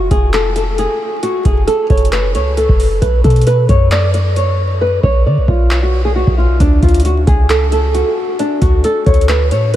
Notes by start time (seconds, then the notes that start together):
0.11 F1 G#4, kick, closed hi-hat
0.33 A4, clap, closed hi-hat
0.56 A4, closed hi-hat
0.78 G#4, closed hi-hat
1.23 F#4, closed hi-hat
1.45 F#1 G#4, kick, closed hi-hat
1.67 A4, closed hi-hat
1.90 F#1 C#5, kick, closed hi-hat
1.97 closed hi-hat
2.05 closed hi-hat
2.12 B4, clap, closed hi-hat
2.35 C#2 C#5, closed hi-hat
2.57 A4, closed hi-hat
2.69 F#1, kick
2.80 open hi-hat
3.02 B1 B4, kick, closed hi-hat
3.24 B2 A4, kick, closed hi-hat
3.30 closed hi-hat
3.36 closed hi-hat
3.41 closed hi-hat
3.47 B4, closed hi-hat
3.69 F#2 C#5, kick, closed hi-hat
3.91 D5, clap, closed hi-hat
4.14 D5, closed hi-hat
4.36 C#5, closed hi-hat
4.81 B4
5.03 B1 C#5, kick
5.26 D3 D5
5.38 B1
5.48 B1 F4, kick
5.71 clap
5.83 F#4
6.05 G#4
6.15 F#4
6.27 B1, kick
6.38 F4
6.60 D2 D4, kick, closed hi-hat
6.83 D2 F4, kick, closed hi-hat
6.89 closed hi-hat
6.94 closed hi-hat
7.00 closed hi-hat
7.05 F#4, closed hi-hat
7.27 C#2 G#4, kick, closed hi-hat
7.49 A4, clap, closed hi-hat
7.72 A4, closed hi-hat
7.94 F#4, closed hi-hat
8.39 D4, closed hi-hat
8.62 D2 F#4, kick, closed hi-hat
8.84 A4, closed hi-hat
9.06 D2 C#5, kick, closed hi-hat
9.14 closed hi-hat
9.21 closed hi-hat
9.29 B4, clap, closed hi-hat
9.51 A2 C#5, closed hi-hat